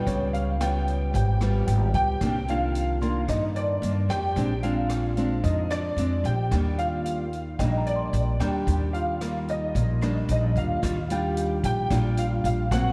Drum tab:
HH |xxxxxxxx|xxxxxxxx|xxxxxxxx|xxxxxxxx|
SD |--r--r--|r---r--r|--r--r--|r---r--r|
BD |o---o--o|o---o---|o---o---|o---o---|

HH |xxxxxxxx|xxxxxxxx|
SD |--r--r--|r---r--r|
BD |o---o--o|o--oo--o|